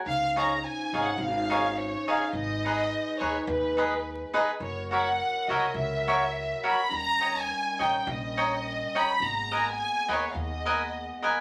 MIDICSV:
0, 0, Header, 1, 5, 480
1, 0, Start_track
1, 0, Tempo, 570342
1, 50, Time_signature, 4, 2, 24, 8
1, 9599, End_track
2, 0, Start_track
2, 0, Title_t, "Violin section"
2, 0, Program_c, 0, 48
2, 64, Note_on_c, 0, 77, 104
2, 299, Note_off_c, 0, 77, 0
2, 319, Note_on_c, 0, 82, 85
2, 534, Note_off_c, 0, 82, 0
2, 540, Note_on_c, 0, 80, 91
2, 855, Note_off_c, 0, 80, 0
2, 869, Note_on_c, 0, 78, 74
2, 1019, Note_off_c, 0, 78, 0
2, 1022, Note_on_c, 0, 77, 86
2, 1488, Note_on_c, 0, 73, 86
2, 1495, Note_off_c, 0, 77, 0
2, 1746, Note_off_c, 0, 73, 0
2, 1756, Note_on_c, 0, 77, 83
2, 1969, Note_off_c, 0, 77, 0
2, 1969, Note_on_c, 0, 75, 101
2, 2668, Note_off_c, 0, 75, 0
2, 2691, Note_on_c, 0, 73, 78
2, 2914, Note_off_c, 0, 73, 0
2, 2928, Note_on_c, 0, 71, 70
2, 3628, Note_off_c, 0, 71, 0
2, 3873, Note_on_c, 0, 73, 75
2, 4117, Note_off_c, 0, 73, 0
2, 4144, Note_on_c, 0, 78, 82
2, 4589, Note_off_c, 0, 78, 0
2, 4610, Note_on_c, 0, 75, 79
2, 4836, Note_off_c, 0, 75, 0
2, 4848, Note_on_c, 0, 76, 79
2, 5562, Note_off_c, 0, 76, 0
2, 5605, Note_on_c, 0, 83, 91
2, 5821, Note_off_c, 0, 83, 0
2, 5821, Note_on_c, 0, 82, 116
2, 6190, Note_off_c, 0, 82, 0
2, 6204, Note_on_c, 0, 80, 106
2, 6570, Note_off_c, 0, 80, 0
2, 6578, Note_on_c, 0, 79, 84
2, 6793, Note_off_c, 0, 79, 0
2, 6800, Note_on_c, 0, 75, 84
2, 7536, Note_off_c, 0, 75, 0
2, 7552, Note_on_c, 0, 83, 94
2, 7760, Note_off_c, 0, 83, 0
2, 7765, Note_on_c, 0, 82, 91
2, 8127, Note_off_c, 0, 82, 0
2, 8140, Note_on_c, 0, 80, 100
2, 8498, Note_off_c, 0, 80, 0
2, 8518, Note_on_c, 0, 73, 83
2, 8667, Note_off_c, 0, 73, 0
2, 8676, Note_on_c, 0, 77, 47
2, 8717, Note_off_c, 0, 77, 0
2, 8748, Note_on_c, 0, 75, 72
2, 9459, Note_off_c, 0, 75, 0
2, 9599, End_track
3, 0, Start_track
3, 0, Title_t, "Cavaquinho"
3, 0, Program_c, 1, 24
3, 303, Note_on_c, 1, 63, 65
3, 307, Note_on_c, 1, 68, 62
3, 311, Note_on_c, 1, 73, 77
3, 312, Note_on_c, 1, 77, 71
3, 438, Note_off_c, 1, 63, 0
3, 440, Note_off_c, 1, 68, 0
3, 442, Note_off_c, 1, 73, 0
3, 443, Note_off_c, 1, 77, 0
3, 786, Note_on_c, 1, 63, 71
3, 792, Note_on_c, 1, 68, 67
3, 792, Note_on_c, 1, 73, 80
3, 795, Note_on_c, 1, 77, 68
3, 920, Note_off_c, 1, 63, 0
3, 923, Note_off_c, 1, 68, 0
3, 923, Note_off_c, 1, 73, 0
3, 924, Note_off_c, 1, 77, 0
3, 1260, Note_on_c, 1, 63, 80
3, 1267, Note_on_c, 1, 68, 73
3, 1273, Note_on_c, 1, 73, 84
3, 1276, Note_on_c, 1, 77, 93
3, 1396, Note_off_c, 1, 63, 0
3, 1400, Note_off_c, 1, 68, 0
3, 1403, Note_off_c, 1, 73, 0
3, 1404, Note_off_c, 1, 77, 0
3, 1748, Note_on_c, 1, 63, 86
3, 1750, Note_on_c, 1, 68, 81
3, 1751, Note_on_c, 1, 73, 74
3, 1764, Note_on_c, 1, 77, 81
3, 1878, Note_off_c, 1, 63, 0
3, 1879, Note_off_c, 1, 68, 0
3, 1880, Note_off_c, 1, 73, 0
3, 1886, Note_off_c, 1, 77, 0
3, 2226, Note_on_c, 1, 63, 61
3, 2236, Note_on_c, 1, 68, 70
3, 2236, Note_on_c, 1, 71, 79
3, 2237, Note_on_c, 1, 75, 81
3, 2355, Note_off_c, 1, 63, 0
3, 2360, Note_off_c, 1, 68, 0
3, 2360, Note_off_c, 1, 71, 0
3, 2361, Note_off_c, 1, 75, 0
3, 2693, Note_on_c, 1, 63, 72
3, 2698, Note_on_c, 1, 68, 71
3, 2699, Note_on_c, 1, 71, 81
3, 2706, Note_on_c, 1, 75, 73
3, 2827, Note_off_c, 1, 63, 0
3, 2830, Note_off_c, 1, 68, 0
3, 2830, Note_off_c, 1, 71, 0
3, 2834, Note_off_c, 1, 75, 0
3, 3171, Note_on_c, 1, 63, 73
3, 3181, Note_on_c, 1, 71, 86
3, 3182, Note_on_c, 1, 68, 83
3, 3182, Note_on_c, 1, 75, 102
3, 3305, Note_off_c, 1, 63, 0
3, 3310, Note_off_c, 1, 71, 0
3, 3311, Note_off_c, 1, 68, 0
3, 3311, Note_off_c, 1, 75, 0
3, 3648, Note_on_c, 1, 63, 84
3, 3651, Note_on_c, 1, 68, 86
3, 3652, Note_on_c, 1, 71, 100
3, 3658, Note_on_c, 1, 75, 104
3, 3784, Note_off_c, 1, 63, 0
3, 3786, Note_off_c, 1, 68, 0
3, 3786, Note_off_c, 1, 71, 0
3, 3789, Note_off_c, 1, 75, 0
3, 4132, Note_on_c, 1, 66, 69
3, 4140, Note_on_c, 1, 70, 70
3, 4143, Note_on_c, 1, 73, 72
3, 4148, Note_on_c, 1, 76, 74
3, 4267, Note_off_c, 1, 66, 0
3, 4271, Note_off_c, 1, 70, 0
3, 4273, Note_off_c, 1, 73, 0
3, 4275, Note_off_c, 1, 76, 0
3, 4624, Note_on_c, 1, 66, 58
3, 4629, Note_on_c, 1, 73, 75
3, 4631, Note_on_c, 1, 70, 80
3, 4634, Note_on_c, 1, 76, 79
3, 4754, Note_off_c, 1, 66, 0
3, 4757, Note_off_c, 1, 73, 0
3, 4758, Note_off_c, 1, 70, 0
3, 4759, Note_off_c, 1, 76, 0
3, 5113, Note_on_c, 1, 66, 73
3, 5113, Note_on_c, 1, 70, 73
3, 5116, Note_on_c, 1, 73, 84
3, 5118, Note_on_c, 1, 76, 78
3, 5242, Note_off_c, 1, 66, 0
3, 5242, Note_off_c, 1, 70, 0
3, 5244, Note_off_c, 1, 73, 0
3, 5244, Note_off_c, 1, 76, 0
3, 5583, Note_on_c, 1, 66, 79
3, 5585, Note_on_c, 1, 70, 75
3, 5586, Note_on_c, 1, 73, 81
3, 5597, Note_on_c, 1, 76, 85
3, 5721, Note_off_c, 1, 66, 0
3, 5722, Note_off_c, 1, 70, 0
3, 5722, Note_off_c, 1, 73, 0
3, 5728, Note_off_c, 1, 76, 0
3, 6066, Note_on_c, 1, 73, 53
3, 6068, Note_on_c, 1, 75, 58
3, 6071, Note_on_c, 1, 79, 79
3, 6076, Note_on_c, 1, 82, 69
3, 6204, Note_off_c, 1, 73, 0
3, 6205, Note_off_c, 1, 75, 0
3, 6206, Note_off_c, 1, 79, 0
3, 6209, Note_off_c, 1, 82, 0
3, 6556, Note_on_c, 1, 73, 61
3, 6558, Note_on_c, 1, 75, 74
3, 6567, Note_on_c, 1, 79, 71
3, 6571, Note_on_c, 1, 82, 82
3, 6692, Note_off_c, 1, 73, 0
3, 6693, Note_off_c, 1, 75, 0
3, 6698, Note_off_c, 1, 79, 0
3, 6700, Note_off_c, 1, 82, 0
3, 7046, Note_on_c, 1, 73, 85
3, 7047, Note_on_c, 1, 79, 79
3, 7049, Note_on_c, 1, 82, 88
3, 7050, Note_on_c, 1, 75, 74
3, 7179, Note_off_c, 1, 73, 0
3, 7180, Note_off_c, 1, 79, 0
3, 7181, Note_off_c, 1, 75, 0
3, 7181, Note_off_c, 1, 82, 0
3, 7532, Note_on_c, 1, 73, 73
3, 7535, Note_on_c, 1, 75, 84
3, 7540, Note_on_c, 1, 82, 96
3, 7541, Note_on_c, 1, 79, 83
3, 7662, Note_off_c, 1, 73, 0
3, 7664, Note_off_c, 1, 75, 0
3, 7666, Note_off_c, 1, 82, 0
3, 7667, Note_off_c, 1, 79, 0
3, 8007, Note_on_c, 1, 70, 66
3, 8009, Note_on_c, 1, 75, 83
3, 8015, Note_on_c, 1, 71, 67
3, 8021, Note_on_c, 1, 80, 74
3, 8139, Note_off_c, 1, 70, 0
3, 8140, Note_off_c, 1, 75, 0
3, 8143, Note_off_c, 1, 71, 0
3, 8146, Note_off_c, 1, 80, 0
3, 8486, Note_on_c, 1, 70, 78
3, 8488, Note_on_c, 1, 80, 75
3, 8489, Note_on_c, 1, 75, 79
3, 8493, Note_on_c, 1, 71, 70
3, 8617, Note_off_c, 1, 70, 0
3, 8618, Note_off_c, 1, 80, 0
3, 8619, Note_off_c, 1, 75, 0
3, 8621, Note_off_c, 1, 71, 0
3, 8968, Note_on_c, 1, 70, 80
3, 8972, Note_on_c, 1, 71, 88
3, 8973, Note_on_c, 1, 75, 92
3, 8975, Note_on_c, 1, 80, 77
3, 9096, Note_off_c, 1, 70, 0
3, 9098, Note_off_c, 1, 71, 0
3, 9099, Note_off_c, 1, 75, 0
3, 9099, Note_off_c, 1, 80, 0
3, 9446, Note_on_c, 1, 70, 81
3, 9450, Note_on_c, 1, 75, 77
3, 9456, Note_on_c, 1, 71, 98
3, 9461, Note_on_c, 1, 80, 107
3, 9571, Note_off_c, 1, 70, 0
3, 9573, Note_off_c, 1, 75, 0
3, 9576, Note_off_c, 1, 71, 0
3, 9579, Note_off_c, 1, 80, 0
3, 9599, End_track
4, 0, Start_track
4, 0, Title_t, "Woodwind section"
4, 0, Program_c, 2, 71
4, 45, Note_on_c, 2, 53, 74
4, 45, Note_on_c, 2, 63, 83
4, 56, Note_on_c, 2, 61, 68
4, 1943, Note_off_c, 2, 53, 0
4, 1948, Note_off_c, 2, 61, 0
4, 1950, Note_on_c, 2, 56, 80
4, 1957, Note_on_c, 2, 71, 86
4, 3726, Note_off_c, 2, 56, 0
4, 3726, Note_off_c, 2, 63, 0
4, 3726, Note_off_c, 2, 71, 0
4, 3869, Note_on_c, 2, 70, 83
4, 3873, Note_on_c, 2, 54, 79
4, 3883, Note_on_c, 2, 64, 68
4, 5791, Note_off_c, 2, 70, 0
4, 5793, Note_off_c, 2, 54, 0
4, 5798, Note_off_c, 2, 64, 0
4, 5802, Note_on_c, 2, 51, 79
4, 5805, Note_on_c, 2, 61, 68
4, 5814, Note_on_c, 2, 55, 81
4, 7723, Note_off_c, 2, 51, 0
4, 7724, Note_off_c, 2, 61, 0
4, 7729, Note_off_c, 2, 55, 0
4, 7754, Note_on_c, 2, 56, 75
4, 7755, Note_on_c, 2, 59, 98
4, 7757, Note_on_c, 2, 58, 72
4, 9599, Note_off_c, 2, 56, 0
4, 9599, Note_off_c, 2, 58, 0
4, 9599, Note_off_c, 2, 59, 0
4, 9599, End_track
5, 0, Start_track
5, 0, Title_t, "Upright bass"
5, 0, Program_c, 3, 32
5, 50, Note_on_c, 3, 37, 90
5, 531, Note_off_c, 3, 37, 0
5, 782, Note_on_c, 3, 32, 79
5, 927, Note_off_c, 3, 32, 0
5, 991, Note_on_c, 3, 32, 104
5, 1618, Note_off_c, 3, 32, 0
5, 1961, Note_on_c, 3, 32, 96
5, 2440, Note_off_c, 3, 32, 0
5, 2702, Note_on_c, 3, 39, 81
5, 2843, Note_off_c, 3, 39, 0
5, 2923, Note_on_c, 3, 39, 111
5, 3544, Note_off_c, 3, 39, 0
5, 3873, Note_on_c, 3, 30, 95
5, 4357, Note_off_c, 3, 30, 0
5, 4614, Note_on_c, 3, 37, 67
5, 4759, Note_off_c, 3, 37, 0
5, 4833, Note_on_c, 3, 37, 102
5, 5468, Note_off_c, 3, 37, 0
5, 5819, Note_on_c, 3, 39, 79
5, 6303, Note_off_c, 3, 39, 0
5, 6563, Note_on_c, 3, 34, 74
5, 6708, Note_off_c, 3, 34, 0
5, 6790, Note_on_c, 3, 34, 112
5, 7415, Note_off_c, 3, 34, 0
5, 7744, Note_on_c, 3, 32, 81
5, 8225, Note_off_c, 3, 32, 0
5, 8489, Note_on_c, 3, 39, 68
5, 8630, Note_off_c, 3, 39, 0
5, 8707, Note_on_c, 3, 39, 95
5, 9323, Note_off_c, 3, 39, 0
5, 9599, End_track
0, 0, End_of_file